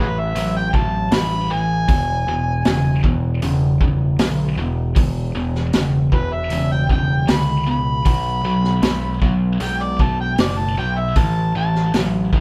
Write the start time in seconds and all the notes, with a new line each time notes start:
Already playing: A1 A2 E3
0.00 B4
0.19 E5
0.35 A1 A2 F#3, open hi-hat
0.57 G5
0.74 A1 A2 F#3 A5, kick
1.11 A1 A2 G3 B5, snare, open hi-hat
1.51 A2 E3 G#5
1.88 E1 E2 B2, kick, open hi-hat
2.27 E1 E2 B2
2.65 E1 E2 C#3, snare, open hi-hat
3.04 E1 E2 B2, kick
3.42 E1 E2 C#3, open hi-hat
3.81 E2 C#3, kick
4.19 B1 E2 D3, snare, open hi-hat
4.57 E1 E2 B2
4.96 E1 E2 B2, kick, open hi-hat
5.35 E1 E2 B2
5.55 snare
5.73 E1 E2 C#3, snare, open hi-hat
6.12 E1 E2 B2 B4, kick
6.33 E5
6.50 E1 E2 C#3, open hi-hat
6.72 G5
6.89 E1 E2 C#3 G5, kick
7.27 C#2 E2 D3 B5, snare, open hi-hat
7.66 E2 B2
7.71 B5
8.05 B1 B2 F#3, kick, open hi-hat
8.44 B1 B2 F#3
8.64 snare
8.82 B1 B2 G#3, snare, open hi-hat
9.22 B1 B2 F#3, kick
9.60 B1 B2 G#3 G5, open hi-hat
9.83 D5
9.99 B2 G#3 A5, kick
10.21 G5
10.38 F#1 B2 A3 D5, snare, open hi-hat
10.59 A5
10.78 B1 B2 F#3 G5
10.98 E5
11.16 A1 A2 E3 A5, kick, open hi-hat
11.55 A1 A2 E3 A5
11.75 snare
11.94 A1 A2 F#3, snare, open hi-hat
12.33 A1 A2 E3, kick